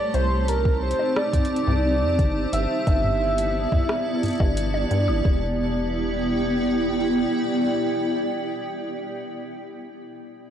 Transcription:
Already playing: C4 G4 D5 A5
0.05 D#4
0.14 C2 C5, closed hi-hat
0.48 A#4, closed hi-hat
0.65 kick
0.83 C5
0.91 closed hi-hat
0.98 C5, high bongo
1.16 D5, cross-stick
1.33 kick, closed hi-hat, mid tom
1.45 closed hi-hat
1.56 closed hi-hat
1.67 C2, mid tom
2.02 F2
2.19 G1, kick, closed hi-hat, mid tom
2.53 G1 B3 E5, closed hi-hat
2.57 E4
2.81 D5
2.87 G1, kick, closed hi-hat, high bongo
3.04 mid tom
3.38 closed hi-hat
3.72 kick, mid tom, high bongo
3.89 cross-stick
4.23 closed hi-hat, mid tom
4.26 closed hi-hat
4.28 closed hi-hat
4.31 closed hi-hat
4.33 closed hi-hat
4.35 closed hi-hat
4.40 G1, kick, high bongo
4.57 closed hi-hat
4.74 high bongo
4.91 G2, closed hi-hat
5.08 G1, high bongo
5.25 E1 B3, kick
5.36 E4
5.46 G4
5.56 D5
5.66 G5

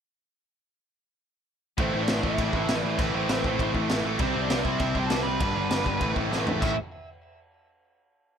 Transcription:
1.78 A1 A2 E3 A3 C4 E4 C5, kick, crash
1.94 A1 A2 E3 A3
2.02 D4 D5
2.08 A1 A2 E3 A3, snare, crash
2.23 A1 A2 E3 A3 E4 E5, kick
2.38 A1 A2 E3 A3, kick, crash
2.53 A1 A2 E3 A3, kick
2.67 A1 A2 E3 A3, snare, crash
2.81 A1 A2 E3 A3 D5
2.98 A1 A2 E3 A3 B3 C4 E4 B4, kick, crash
3.13 A1 A2 E3 A3 C4 C5
3.28 A1 A2 E3 A3, snare, crash
3.44 A1 A2 E3 A3, kick
3.59 A1 A2 E3 A3, kick, crash
3.74 A1 A2 E3 A3, kick
3.89 A1 A2 E3 A3, snare, crash
4.04 A1 A2 E3 A3
4.19 C2 C3 G3 C4 E4 C5, kick, crash
4.36 C2 C3 G3 C4
4.41 D4 D5
4.50 C2 C3 G3 C4, snare, crash
4.63 C2 C3 G3 C4 E4 E5, kick
4.79 C2 C3 G3 C4, kick, crash
4.95 C2 C3 G3 C4, kick
4.99 G5
5.04 G4 A5
5.10 C2 C3 G3 C4 A4, snare, crash
5.23 C2 C4 B4 B5
5.27 C3 G3
5.40 G1 G2 D3 G3 B3 D4, kick, crash
5.55 G1 G2 D3 G3
5.70 G1 G2 D3 G3, snare, crash
5.86 G1 G2 D3 G3, kick
6.01 A1 A2 E3 A3 C4 E4, kick, crash
6.16 A1 A2 E3 A3, kick
6.31 A1 A2 E3 A3, snare
6.46 A1 A2 E3 A3, floor tom
6.61 A1 A2 E3 A3 C#4 E4 E5, kick, crash

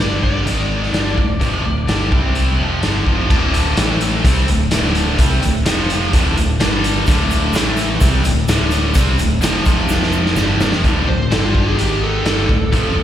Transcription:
0.00 G1 G2 D3 G3 D5, snare
0.23 D5, kick
0.45 G#1 G#2 D#3 G#3, closed hi-hat
0.83 snare
0.92 G1 G2 D3 G3, snare, closed hi-hat
1.17 D1 D2 A2, kick
1.40 F1 F2 C3 F3, kick, closed hi-hat
1.64 D1 D2 A2
1.87 G1 G2 D3 G3, snare, closed hi-hat
2.11 C2 C3 G3 C4, kick
2.35 closed hi-hat
2.59 F1 F2 C3 F3
2.82 G1 G2 D3 G3, snare, closed hi-hat
3.06 F1 F2 C3 F3, kick
3.30 D1 D2 A2 D3, kick, crash
3.54 closed hi-hat
3.77 A1 A2 E3 A3, snare, closed hi-hat
4.01 closed hi-hat
4.24 C2 C3 G3 C4, kick, closed hi-hat
4.48 D1 D2 A2, closed hi-hat
4.71 D1 D2 A2 D3, snare, closed hi-hat
4.84 snare
4.95 closed hi-hat
5.18 C2 C3 G3 C4, kick, closed hi-hat
5.42 D1 D2 A2, closed hi-hat
5.66 F1 F2 C3 F3, snare, closed hi-hat
5.90 closed hi-hat
6.13 D1 D2 A2 D3, kick, closed hi-hat
6.36 D1 D2 A2, closed hi-hat
6.60 G1 G2 D3 G3, snare, closed hi-hat
6.84 closed hi-hat
7.06 D1 D2 A2 D3, kick, closed hi-hat, shaker
7.31 closed hi-hat, shaker
7.53 A1 A2 E3 A3, snare, closed hi-hat, shaker
7.77 closed hi-hat, shaker
8.01 C2 C3 G3 C4, kick, closed hi-hat, shaker
8.24 D1 D2 A2, closed hi-hat, shaker
8.48 D1 D2 A2 D3, snare, closed hi-hat, shaker
8.71 closed hi-hat, shaker
8.94 C2 C3 G3 C4, kick, closed hi-hat, shaker
9.18 D1 D2 A2, closed hi-hat, shaker
9.41 F1 F2 C3 F3, snare, closed hi-hat, shaker
9.65 F1 F2 C3 F3, kick, snare, closed hi-hat, shaker
9.89 snare, shaker
10.03 snare
10.12 shaker
10.26 snare
10.35 G1 G2 D3 G3, snare, shaker
10.59 F1 F2 C3 F3, snare, shaker
10.72 snare
10.84 D1 D2 A2 D3 F#3 A3 D4 A4, kick, closed hi-hat
11.07 D1 D2 A2 C5
11.30 G1 G2 D3 G3 D4 G4 A4, snare, closed hi-hat
11.44 F4
11.55 kick
11.68 G#4
11.77 G#1 G#2 D#3 G#3 D#4 G4 G#4, closed hi-hat
12.03 A4
12.23 G1 G2 D3 F#3 G3 A3 D4 A4, snare, closed hi-hat
12.49 D1 D2 A2, kick
12.72 F1 F2 C3 F3, kick, closed hi-hat
12.95 D1 D2 A2

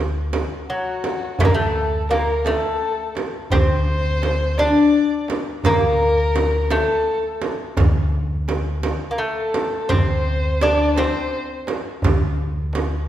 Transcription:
Already playing: D2
0.33 tombak tek, frame drum
0.69 F#3 F#4
1.04 tombak tek, frame drum
1.22 tombak ka
1.39 D2 A3 A4, tombak dum, frame drum
1.45 A#3
1.54 A3 A4
2.09 A#3 A#4, tombak tek, frame drum
2.45 A3 A4, tombak tek, frame drum
3.15 tombak tek, frame drum
3.34 tombak ka
3.50 D2 C4 C5, tombak dum, frame drum
4.22 tombak tek, frame drum
4.58 D4 D5, tombak tek, frame drum
5.28 tombak tek, frame drum
5.46 tombak ka
5.64 D2 A#3 A#4, tombak dum, frame drum
5.99 tombak ka
6.35 tombak tek, frame drum
6.71 A3 A4, tombak tek, frame drum
7.06 tombak ka
7.42 tombak tek, frame drum
7.60 tombak ka
7.77 D2, tombak dum, frame drum
8.48 tombak tek, frame drum
8.83 tombak tek, frame drum
9.11 A#3
9.18 A3 A4
9.54 tombak tek, frame drum
9.72 tombak ka
9.89 D2 C4 C5, tombak dum, frame drum
10.61 D4 D5, tombak tek, frame drum
10.96 C4 C5, tombak tek, frame drum
11.67 tombak tek, frame drum
11.84 tombak ka
12.02 D2, tombak dum, frame drum
12.73 tombak tek, frame drum

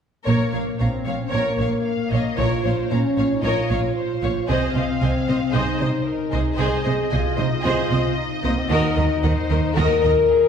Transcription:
0.25 A#1 A#2 A#3 A#4 C#5
0.53 A#1 A#2 C#5 F5
0.79 A#1 A#2 C4 C#5 F5 A#5
1.05 A#1 A#2 C#5 F5
1.20 C#4
1.32 A#1 A#2 A#3 A#4 C#5
1.57 A#1 A#2 C#5 F5
1.84 F5
2.11 A#1 A#2 C#5 D#5 F5
2.36 A#1 A#2 F4 C#5
2.41 A#4 C#5
2.63 A#1 A#2 C5 C#5 F5
2.91 A#1 A#2 C#4 C#5 F5 A#5
3.17 A#1 A#2 C#5 F5
3.33 D#4
3.43 A#1 A#2 F4 A#4 C#5 D#5
3.70 A#1 A#2 C#5 F5
3.95 C5
4.22 A#1 A#2 C#5 F5
4.49 C2 C3 C4 G#4 C5 D#5
4.74 C2 C3 C5 D#5 F5
5.02 C2 C3 C5 D#5 G#5
5.28 C2 C3 C5 D#5
5.53 C2 C3 D#4 G#4 C5 D#5
5.79 C2 C3 C5 D#5
6.05 A#4
6.31 C2 C3 G#4 C5 D#5
6.58 C2 C3 G#4 C5 D#5
6.84 C2 C3 C5 D#5
7.11 C2 C3 F4 C5 D#5 G#5
7.37 C2 C3 D#4 C5 D#5
7.51 F4
7.64 C2 C3 F4 G#4 C5 D#5
7.91 C2 C3 C5 D#5
8.16 D#4
8.43 C2 C3 A#3 C5 D#5
8.57 C4
8.69 D#2 D#3 D#4 F#4 A#4 D#5
8.96 D#2 D#3 A#4 D#5
9.23 D#2 D#3 A#4 C5 D#5 F#5
9.50 D#2 D#3 A#4 D#5
9.75 D#2 D#3 F#4 A#4 D#5
10.02 D#2 D#3 A#4 D#5
10.30 G#4

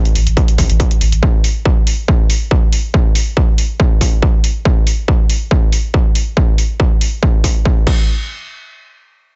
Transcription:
0.05 closed hi-hat
0.15 A1, open hi-hat
0.27 A1, closed hi-hat
0.37 kick, closed hi-hat
0.48 closed hi-hat
0.58 A1, kick, open hi-hat
0.70 A1, closed hi-hat
0.80 kick, closed hi-hat
0.91 closed hi-hat
1.01 A1, open hi-hat
1.12 A1, closed hi-hat
1.23 kick
1.44 open hi-hat
1.65 kick
1.87 open hi-hat
2.08 kick
2.30 open hi-hat
2.51 kick
2.72 open hi-hat
2.94 kick
3.15 open hi-hat
3.37 kick
3.58 open hi-hat
3.80 kick
4.01 kick, open hi-hat
4.22 kick
4.44 open hi-hat
4.65 kick
4.87 open hi-hat
5.08 kick
5.30 open hi-hat
5.51 kick
5.72 open hi-hat
5.94 kick
6.15 open hi-hat
6.37 kick
6.58 open hi-hat
6.80 kick
7.01 open hi-hat
7.23 kick
7.44 kick, open hi-hat
7.65 kick
7.87 kick, crash

